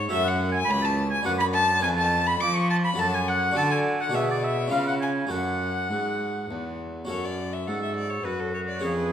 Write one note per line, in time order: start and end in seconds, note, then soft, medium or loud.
0.00 0.11 G#2 medium
0.09 0.67 F#2 loud
0.09 1.21 C#4 medium
0.09 1.22 F#4 medium
0.09 1.23 A4 medium
0.09 0.26 E5 loud
0.09 0.29 E5 loud
0.13 0.66 F#2 medium
0.25 0.51 F#5 medium
0.25 0.56 F#5 loud
0.52 0.59 G#5 loud
0.56 0.72 G#5 loud
0.65 1.24 C#2 loud
0.65 0.72 B5 loud
0.70 1.23 C#2 medium
0.70 0.86 B5 loud
0.82 0.95 A5 medium
0.82 1.11 A5 loud
1.10 1.25 G#5 loud
1.23 1.84 F#2 medium
1.23 1.80 D4 medium
1.23 1.81 F#4 medium
1.23 1.80 B4 medium
1.23 1.31 F#5 loud
1.23 1.32 F#5 loud
1.27 1.80 F#2 medium
1.38 1.45 B5 loud
1.38 1.46 B5 loud
1.54 1.83 A5 loud
1.54 1.82 A5 loud
1.79 2.40 F2 medium
1.79 2.92 C#4 medium
1.79 2.94 B4 medium
1.79 1.89 G#5 loud
1.83 2.37 F2 medium
1.83 1.89 G#5 loud
1.97 2.26 A5 loud
1.97 2.28 A5 loud
2.26 2.42 B5 loud
2.26 2.34 B5 loud
2.40 2.97 F3 loud
2.40 2.95 F3 medium
2.40 2.57 D6 loud
2.40 2.56 D6 loud
2.54 2.69 C#6 loud
2.70 2.75 A5 loud
2.70 2.84 A5 loud
2.85 2.91 B5 loud
2.85 3.00 B5 loud
2.94 3.55 F#2 medium
2.94 3.52 C#4 medium
2.94 3.52 F#4 medium
2.94 3.54 A4 medium
2.98 3.52 F#2 medium
2.98 3.16 A5 loud
2.98 3.07 A5 loud
3.14 3.30 G#5 loud
3.14 3.21 G#5 medium
3.28 3.58 F#5 loud
3.28 3.57 F#5 loud
3.51 4.12 D3 medium
3.51 4.08 D4 medium
3.51 4.10 F#4 medium
3.51 4.11 A4 medium
3.56 4.10 D3 medium
3.56 3.70 A5 loud
3.56 3.74 A5 loud
3.71 3.79 G#5 loud
3.71 4.02 G#5 medium
4.01 4.16 F#5 loud
4.01 4.17 F#5 medium
4.09 4.72 B2 medium
4.09 4.68 D4 medium
4.09 4.69 F#4 medium
4.09 4.69 G#4 medium
4.14 4.68 B2 medium
4.14 4.29 E5 loud
4.30 4.44 D5 loud
4.30 4.37 D5 medium
4.43 4.73 E5 loud
4.43 4.57 E5 medium
4.67 5.29 C#3 medium
4.67 5.26 C#4 medium
4.67 5.28 F4 medium
4.67 5.29 B4 medium
4.67 4.86 F5 loud
4.72 5.27 C#3 medium
4.72 4.87 F5 medium
4.87 4.94 F#5 medium
4.87 4.93 F#5 loud
5.00 5.33 G#5 medium
5.00 5.10 G#5 loud
5.27 5.90 F#2 medium
5.27 5.86 C#4 medium
5.27 7.04 F#4 medium
5.27 7.05 A4 soft
5.31 5.86 F#2 medium
5.31 6.80 F#5 medium
5.31 6.77 F#5 loud
5.89 6.49 G#2 medium
5.89 6.46 G#2 medium
6.50 7.08 E2 medium
6.50 7.06 E2 medium
7.05 7.68 F#2 medium
7.05 7.63 C#4 soft
7.05 8.78 F#4 soft
7.05 8.79 A4 soft
7.09 7.63 F#2 medium
7.09 7.26 C#5 medium
7.25 7.54 D5 medium
7.53 7.68 E5 medium
7.67 8.24 G#2 medium
7.67 8.21 G#2 medium
7.67 8.26 A4 medium
7.67 7.82 F#5 medium
7.82 7.95 E5 medium
7.96 8.11 D5 medium
8.09 8.25 C#5 medium
8.24 8.84 F#2 medium
8.24 8.79 F#2 medium
8.24 8.83 F#4 medium
8.24 8.41 B4 medium
8.40 8.53 A4 medium
8.54 8.60 C#5 medium
8.68 8.84 D5 medium
8.79 9.12 F2 medium
8.79 9.12 C#4 soft
8.79 9.12 G#4 soft
8.79 8.96 C#5 medium
8.84 9.12 F2 soft
8.84 9.12 G#4 medium
8.97 9.12 B4 medium